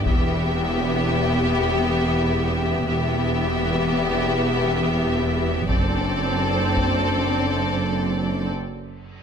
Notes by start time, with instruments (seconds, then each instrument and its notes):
0.06 double bass section E1, cello section E2, viola section B3, french horn section B3 G4, violin section G4 E5, taiko
2.87 double bass section E1, cello section E2, viola section B3, french horn section B3 G4, violin section G4 E5
5.69 double bass section F#1, cello section F#2, viola section C4, french horn section C4 D4, violin section A4 D5, taiko
6.77 taiko
8.55 reverse cymbal